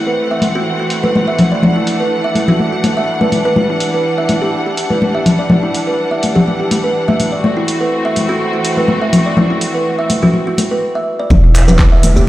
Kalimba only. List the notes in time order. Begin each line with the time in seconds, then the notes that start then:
0.07 B4
0.31 E5
0.55 F#4
0.79 F#4
1.03 B4
1.28 E5
1.52 D5
1.76 E4
2.00 B4
2.24 E5
2.48 F#4
2.73 F#4
2.97 E5
3.21 B4
3.45 B4
3.69 E4
3.94 B4
4.18 E5
4.42 G4
4.66 G4
4.90 B4
5.15 E5
5.39 D5
5.63 E4
5.87 B4
6.11 E5
6.35 G4
6.59 G4
6.84 B4
7.08 E5
7.32 D5
7.57 E4
7.81 B4
8.05 E5
8.29 F#4
8.53 F#4
8.77 B4
9.02 E5
9.26 D5
9.50 E4
9.74 B4
9.99 E5
10.23 F#4
10.47 F#4
10.71 B4
10.95 E5
11.19 D5
11.44 E4
11.68 B4
11.92 E5
12.16 G4